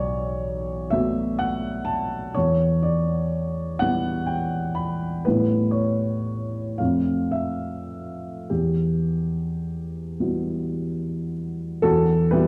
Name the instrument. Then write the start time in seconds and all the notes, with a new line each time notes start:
grand piano
Already playing: B1 C#5 D5
0.90 A3 B3 F#4 E5
1.39 F#5
1.85 A5
2.35 E2 C#5
2.83 D5
3.79 G3 B3 E4 F#5
4.26 G5
4.75 B5
5.25 A2 G3 A3 B3 E4 B4
5.71 C#5
6.78 F2 F3 A3 C4 F4 F5
7.31 E5
8.50 E2 G4
10.20 G3 B3 E4 F#4
11.82 E2 F#4 A4
12.31 G3 B3 E4 F#4 G4 B4